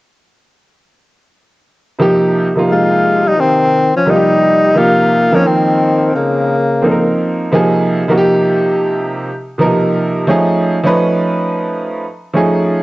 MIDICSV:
0, 0, Header, 1, 4, 480
1, 0, Start_track
1, 0, Tempo, 689655
1, 1395, Time_signature, 4, 2, 24, 8
1, 8929, End_track
2, 0, Start_track
2, 0, Title_t, "Tenor saxophone"
2, 0, Program_c, 0, 66
2, 1894, Note_on_c, 0, 65, 89
2, 2284, Note_on_c, 0, 63, 103
2, 2295, Note_off_c, 0, 65, 0
2, 2369, Note_on_c, 0, 60, 107
2, 2379, Note_off_c, 0, 63, 0
2, 2756, Note_off_c, 0, 60, 0
2, 2760, Note_on_c, 0, 61, 86
2, 2854, Note_on_c, 0, 63, 98
2, 2864, Note_off_c, 0, 61, 0
2, 3329, Note_on_c, 0, 65, 108
2, 3339, Note_off_c, 0, 63, 0
2, 3726, Note_on_c, 0, 61, 94
2, 3736, Note_off_c, 0, 65, 0
2, 3807, Note_on_c, 0, 60, 78
2, 3818, Note_off_c, 0, 61, 0
2, 4282, Note_off_c, 0, 60, 0
2, 4286, Note_on_c, 0, 58, 80
2, 4973, Note_off_c, 0, 58, 0
2, 8929, End_track
3, 0, Start_track
3, 0, Title_t, "Upright piano"
3, 0, Program_c, 1, 0
3, 1383, Note_on_c, 1, 48, 78
3, 1390, Note_on_c, 1, 53, 82
3, 1395, Note_on_c, 1, 58, 77
3, 1401, Note_on_c, 1, 63, 78
3, 1405, Note_on_c, 1, 67, 100
3, 1733, Note_off_c, 1, 48, 0
3, 1736, Note_off_c, 1, 53, 0
3, 1739, Note_off_c, 1, 58, 0
3, 1742, Note_off_c, 1, 63, 0
3, 1744, Note_off_c, 1, 67, 0
3, 1778, Note_on_c, 1, 48, 72
3, 1784, Note_on_c, 1, 53, 65
3, 1790, Note_on_c, 1, 58, 65
3, 1795, Note_on_c, 1, 63, 65
3, 1801, Note_on_c, 1, 65, 86
3, 2610, Note_off_c, 1, 48, 0
3, 2613, Note_off_c, 1, 53, 0
3, 2616, Note_off_c, 1, 58, 0
3, 2618, Note_off_c, 1, 63, 0
3, 2621, Note_off_c, 1, 65, 0
3, 2825, Note_on_c, 1, 48, 74
3, 2830, Note_on_c, 1, 53, 63
3, 2836, Note_on_c, 1, 58, 61
3, 2841, Note_on_c, 1, 63, 64
3, 2847, Note_on_c, 1, 65, 62
3, 2890, Note_on_c, 1, 67, 79
3, 2900, Note_off_c, 1, 65, 0
3, 3273, Note_off_c, 1, 48, 0
3, 3275, Note_off_c, 1, 53, 0
3, 3279, Note_off_c, 1, 58, 0
3, 3281, Note_off_c, 1, 63, 0
3, 3303, Note_on_c, 1, 48, 72
3, 3306, Note_off_c, 1, 67, 0
3, 3308, Note_on_c, 1, 53, 67
3, 3313, Note_on_c, 1, 58, 64
3, 3319, Note_on_c, 1, 63, 69
3, 3324, Note_on_c, 1, 67, 84
3, 3653, Note_off_c, 1, 48, 0
3, 3655, Note_off_c, 1, 53, 0
3, 3658, Note_off_c, 1, 58, 0
3, 3661, Note_off_c, 1, 63, 0
3, 3663, Note_off_c, 1, 67, 0
3, 3699, Note_on_c, 1, 60, 74
3, 3704, Note_on_c, 1, 53, 69
3, 3709, Note_on_c, 1, 58, 67
3, 3716, Note_on_c, 1, 63, 68
3, 3721, Note_on_c, 1, 70, 78
3, 4530, Note_off_c, 1, 60, 0
3, 4533, Note_off_c, 1, 53, 0
3, 4535, Note_off_c, 1, 58, 0
3, 4539, Note_off_c, 1, 63, 0
3, 4541, Note_off_c, 1, 70, 0
3, 4745, Note_on_c, 1, 60, 65
3, 4752, Note_on_c, 1, 53, 64
3, 4758, Note_on_c, 1, 58, 65
3, 4764, Note_on_c, 1, 63, 68
3, 4767, Note_on_c, 1, 69, 62
3, 4813, Note_on_c, 1, 70, 79
3, 4820, Note_off_c, 1, 69, 0
3, 5193, Note_off_c, 1, 60, 0
3, 5196, Note_off_c, 1, 53, 0
3, 5200, Note_off_c, 1, 58, 0
3, 5202, Note_off_c, 1, 63, 0
3, 5227, Note_off_c, 1, 70, 0
3, 5229, Note_on_c, 1, 48, 83
3, 5236, Note_on_c, 1, 53, 89
3, 5241, Note_on_c, 1, 58, 84
3, 5247, Note_on_c, 1, 63, 84
3, 5252, Note_on_c, 1, 68, 93
3, 5576, Note_off_c, 1, 48, 0
3, 5579, Note_off_c, 1, 53, 0
3, 5582, Note_off_c, 1, 58, 0
3, 5585, Note_off_c, 1, 63, 0
3, 5587, Note_off_c, 1, 68, 0
3, 5624, Note_on_c, 1, 48, 91
3, 5630, Note_on_c, 1, 53, 85
3, 5636, Note_on_c, 1, 58, 81
3, 5641, Note_on_c, 1, 63, 85
3, 5646, Note_on_c, 1, 66, 82
3, 5670, Note_off_c, 1, 66, 0
3, 5690, Note_on_c, 1, 67, 108
3, 6453, Note_off_c, 1, 48, 0
3, 6455, Note_off_c, 1, 53, 0
3, 6458, Note_off_c, 1, 58, 0
3, 6461, Note_off_c, 1, 63, 0
3, 6486, Note_off_c, 1, 67, 0
3, 6668, Note_on_c, 1, 47, 68
3, 6675, Note_on_c, 1, 53, 79
3, 6680, Note_on_c, 1, 58, 73
3, 6685, Note_on_c, 1, 63, 78
3, 6691, Note_on_c, 1, 70, 94
3, 6714, Note_on_c, 1, 48, 77
3, 6730, Note_off_c, 1, 47, 0
3, 7118, Note_off_c, 1, 53, 0
3, 7120, Note_off_c, 1, 58, 0
3, 7123, Note_off_c, 1, 63, 0
3, 7126, Note_off_c, 1, 70, 0
3, 7138, Note_off_c, 1, 48, 0
3, 7147, Note_on_c, 1, 53, 91
3, 7153, Note_on_c, 1, 57, 79
3, 7157, Note_on_c, 1, 61, 82
3, 7163, Note_on_c, 1, 63, 77
3, 7169, Note_on_c, 1, 68, 98
3, 7495, Note_off_c, 1, 53, 0
3, 7498, Note_off_c, 1, 57, 0
3, 7500, Note_off_c, 1, 61, 0
3, 7503, Note_off_c, 1, 63, 0
3, 7506, Note_off_c, 1, 68, 0
3, 7540, Note_on_c, 1, 53, 90
3, 7547, Note_on_c, 1, 57, 78
3, 7552, Note_on_c, 1, 61, 88
3, 7558, Note_on_c, 1, 63, 81
3, 7563, Note_on_c, 1, 71, 96
3, 8371, Note_off_c, 1, 53, 0
3, 8374, Note_off_c, 1, 57, 0
3, 8377, Note_off_c, 1, 61, 0
3, 8379, Note_off_c, 1, 63, 0
3, 8382, Note_off_c, 1, 71, 0
3, 8585, Note_on_c, 1, 53, 78
3, 8590, Note_on_c, 1, 57, 74
3, 8595, Note_on_c, 1, 61, 69
3, 8602, Note_on_c, 1, 63, 73
3, 8607, Note_on_c, 1, 68, 89
3, 8929, Note_off_c, 1, 53, 0
3, 8929, Note_off_c, 1, 57, 0
3, 8929, Note_off_c, 1, 61, 0
3, 8929, Note_off_c, 1, 63, 0
3, 8929, Note_off_c, 1, 68, 0
3, 8929, End_track
4, 0, Start_track
4, 0, Title_t, "Trombone"
4, 0, Program_c, 2, 57
4, 1882, Note_on_c, 2, 56, 78
4, 2271, Note_on_c, 2, 55, 73
4, 2282, Note_off_c, 2, 56, 0
4, 2359, Note_on_c, 2, 51, 85
4, 2369, Note_off_c, 2, 55, 0
4, 2748, Note_off_c, 2, 51, 0
4, 2753, Note_on_c, 2, 53, 81
4, 2839, Note_on_c, 2, 55, 86
4, 2849, Note_off_c, 2, 53, 0
4, 3316, Note_on_c, 2, 58, 79
4, 3327, Note_off_c, 2, 55, 0
4, 3709, Note_on_c, 2, 53, 79
4, 3719, Note_off_c, 2, 58, 0
4, 3794, Note_on_c, 2, 51, 79
4, 3804, Note_off_c, 2, 53, 0
4, 4275, Note_off_c, 2, 51, 0
4, 4278, Note_on_c, 2, 49, 76
4, 4969, Note_off_c, 2, 49, 0
4, 8929, End_track
0, 0, End_of_file